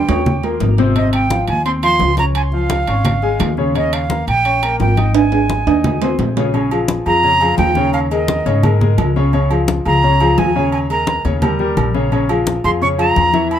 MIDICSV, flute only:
0, 0, Header, 1, 2, 480
1, 0, Start_track
1, 0, Tempo, 348635
1, 1323, Time_signature, 4, 2, 24, 8
1, 18716, End_track
2, 0, Start_track
2, 0, Title_t, "Flute"
2, 0, Program_c, 0, 73
2, 0, Note_on_c, 0, 79, 80
2, 657, Note_off_c, 0, 79, 0
2, 1323, Note_on_c, 0, 75, 85
2, 1546, Note_off_c, 0, 75, 0
2, 1559, Note_on_c, 0, 79, 92
2, 2007, Note_off_c, 0, 79, 0
2, 2039, Note_on_c, 0, 80, 94
2, 2264, Note_off_c, 0, 80, 0
2, 2277, Note_on_c, 0, 84, 98
2, 2359, Note_off_c, 0, 84, 0
2, 2521, Note_on_c, 0, 84, 123
2, 2969, Note_off_c, 0, 84, 0
2, 3013, Note_on_c, 0, 82, 102
2, 3096, Note_off_c, 0, 82, 0
2, 3247, Note_on_c, 0, 80, 91
2, 3330, Note_off_c, 0, 80, 0
2, 3482, Note_on_c, 0, 77, 94
2, 4869, Note_off_c, 0, 77, 0
2, 5177, Note_on_c, 0, 75, 83
2, 5419, Note_on_c, 0, 77, 82
2, 5440, Note_off_c, 0, 75, 0
2, 5887, Note_off_c, 0, 77, 0
2, 5895, Note_on_c, 0, 79, 106
2, 6561, Note_off_c, 0, 79, 0
2, 6624, Note_on_c, 0, 79, 86
2, 7063, Note_off_c, 0, 79, 0
2, 7108, Note_on_c, 0, 80, 85
2, 8484, Note_off_c, 0, 80, 0
2, 9729, Note_on_c, 0, 82, 115
2, 10399, Note_off_c, 0, 82, 0
2, 10435, Note_on_c, 0, 79, 100
2, 10888, Note_off_c, 0, 79, 0
2, 10922, Note_on_c, 0, 77, 87
2, 11005, Note_off_c, 0, 77, 0
2, 11166, Note_on_c, 0, 75, 76
2, 12072, Note_off_c, 0, 75, 0
2, 13582, Note_on_c, 0, 82, 109
2, 14296, Note_on_c, 0, 80, 95
2, 14317, Note_off_c, 0, 82, 0
2, 14768, Note_off_c, 0, 80, 0
2, 14776, Note_on_c, 0, 80, 93
2, 14859, Note_off_c, 0, 80, 0
2, 15025, Note_on_c, 0, 82, 86
2, 15463, Note_off_c, 0, 82, 0
2, 17409, Note_on_c, 0, 84, 104
2, 17492, Note_off_c, 0, 84, 0
2, 17652, Note_on_c, 0, 85, 101
2, 17734, Note_off_c, 0, 85, 0
2, 17890, Note_on_c, 0, 82, 113
2, 18559, Note_off_c, 0, 82, 0
2, 18610, Note_on_c, 0, 83, 101
2, 18716, Note_off_c, 0, 83, 0
2, 18716, End_track
0, 0, End_of_file